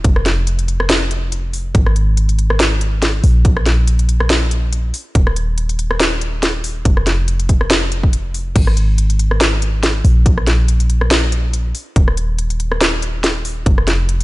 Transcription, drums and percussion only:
0.04 kick loud
0.04 closed hi-hat medium
0.16 cross-stick medium
0.26 snare medium
0.26 closed hi-hat medium
0.47 closed hi-hat medium
0.59 closed hi-hat medium
0.68 closed hi-hat medium
0.80 cross-stick medium
0.90 snare loud
0.90 closed hi-hat medium
1.11 closed hi-hat medium
1.32 closed hi-hat medium
1.53 open hi-hat medium
1.75 kick loud
1.75 closed hi-hat medium
1.86 cross-stick medium
1.96 closed hi-hat medium
2.17 closed hi-hat medium
2.29 closed hi-hat medium
2.39 closed hi-hat medium
2.50 cross-stick medium
2.60 snare loud
2.60 closed hi-hat medium
2.81 closed hi-hat medium
3.02 snare medium
3.02 closed hi-hat medium
3.24 open hi-hat medium
3.45 kick loud
3.45 closed hi-hat medium
3.57 cross-stick medium
3.66 snare medium
3.66 closed hi-hat medium
3.87 closed hi-hat medium
3.99 closed hi-hat medium
4.09 closed hi-hat medium
4.20 cross-stick medium
4.30 snare loud
4.30 closed hi-hat medium
4.51 closed hi-hat medium
4.73 closed hi-hat medium
4.94 open hi-hat loud
5.15 kick loud
5.15 closed hi-hat medium
5.27 cross-stick medium
5.36 closed hi-hat medium
5.58 closed hi-hat medium
5.69 closed hi-hat medium
5.79 closed hi-hat medium
5.91 cross-stick medium
6.00 snare loud
6.00 closed hi-hat medium
6.21 closed hi-hat medium
6.43 snare medium
6.43 closed hi-hat medium
6.64 open hi-hat loud
6.85 kick loud
6.85 closed hi-hat medium
6.97 cross-stick medium
7.07 snare medium
7.07 closed hi-hat medium
7.28 closed hi-hat medium
7.40 closed hi-hat medium
7.49 kick medium
7.49 closed hi-hat medium
7.61 cross-stick medium
7.70 snare loud
7.70 closed hi-hat medium
7.92 closed hi-hat medium
8.03 kick medium
8.13 closed hi-hat medium
8.34 open hi-hat medium
8.56 kick loud
8.56 closed hi-hat medium
8.56 crash medium
8.67 cross-stick medium
8.77 closed hi-hat medium
8.98 closed hi-hat medium
9.10 closed hi-hat medium
9.19 closed hi-hat medium
9.31 cross-stick medium
9.41 snare loud
9.41 closed hi-hat medium
9.62 closed hi-hat medium
9.83 snare medium
9.83 closed hi-hat medium
10.05 open hi-hat medium
10.26 kick loud
10.26 closed hi-hat medium
10.38 cross-stick medium
10.47 snare medium
10.47 closed hi-hat medium
10.68 closed hi-hat medium
10.80 closed hi-hat medium
10.90 closed hi-hat medium
11.01 cross-stick medium
11.11 snare loud
11.11 closed hi-hat medium
11.32 closed hi-hat medium
11.54 closed hi-hat medium
11.75 open hi-hat medium
11.96 kick loud
11.96 closed hi-hat medium
12.08 cross-stick medium
12.17 closed hi-hat medium
12.39 closed hi-hat medium
12.50 closed hi-hat medium
12.60 closed hi-hat medium
12.72 cross-stick medium
12.81 snare loud
12.81 closed hi-hat medium
13.02 closed hi-hat medium
13.24 snare medium
13.24 closed hi-hat medium
13.45 open hi-hat medium
13.66 kick loud
13.66 closed hi-hat medium
13.78 cross-stick medium
13.87 snare medium
13.87 closed hi-hat medium
14.09 closed hi-hat medium
14.21 closed hi-hat medium

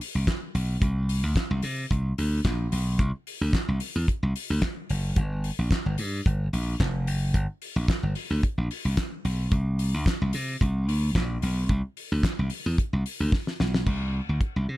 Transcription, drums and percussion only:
0.01 open hi-hat medium
0.27 kick medium
0.27 snare loud
0.27 clap medium
0.27 closed hi-hat medium
0.55 open hi-hat medium
0.82 kick loud
0.82 closed hi-hat medium
1.09 open hi-hat medium
1.36 kick loud
1.36 snare loud
1.36 clap medium
1.36 closed hi-hat medium
1.62 open hi-hat medium
1.91 kick medium
1.91 closed hi-hat medium
2.18 open hi-hat medium
2.45 kick loud
2.45 snare medium
2.45 clap medium
2.45 closed hi-hat medium
2.72 open hi-hat medium
2.99 kick loud
2.99 closed hi-hat medium
3.27 open hi-hat medium
3.53 kick loud
3.53 snare medium
3.53 clap medium
3.53 closed hi-hat medium
3.80 open hi-hat medium
4.08 kick medium
4.08 closed hi-hat medium
4.36 open hi-hat medium
4.62 kick medium
4.62 snare loud
4.62 clap medium
4.62 closed hi-hat medium
4.89 open hi-hat medium
5.16 kick loud
5.16 closed hi-hat medium
5.44 open hi-hat soft
5.71 kick loud
5.71 snare loud
5.71 clap medium
5.71 closed hi-hat medium
5.98 open hi-hat medium
6.26 kick loud
6.26 closed hi-hat medium
6.53 open hi-hat medium
6.80 kick loud
6.80 snare loud
6.80 clap medium
6.80 closed hi-hat medium
7.07 open hi-hat medium
7.34 kick medium
7.34 closed hi-hat medium
7.62 open hi-hat medium
7.88 kick loud
7.88 snare loud
7.88 clap medium
7.88 closed hi-hat medium
8.15 open hi-hat medium
8.43 kick loud
8.43 closed hi-hat medium
8.71 open hi-hat medium
8.97 kick medium
8.97 snare loud
8.97 clap medium
8.97 closed hi-hat medium
9.25 open hi-hat medium
9.52 kick loud
9.52 closed hi-hat medium
9.79 open hi-hat medium
10.06 kick loud
10.06 snare loud
10.06 clap medium
10.06 closed hi-hat medium
10.33 open hi-hat medium
10.61 kick medium
10.61 closed hi-hat medium
10.89 open hi-hat medium
11.15 kick medium
11.15 snare loud
11.15 clap medium
11.42 open hi-hat medium
11.69 kick loud
11.69 closed hi-hat medium
11.97 open hi-hat medium
12.23 kick loud
12.23 snare loud
12.23 clap medium
12.23 closed hi-hat medium
12.50 open hi-hat medium
12.78 kick loud
12.78 closed hi-hat medium
13.06 open hi-hat medium
13.32 kick loud
13.32 snare medium
13.47 snare medium
13.60 snare medium
13.74 snare loud
13.87 kick loud
13.87 crash medium
14.41 kick medium
14.41 closed hi-hat medium

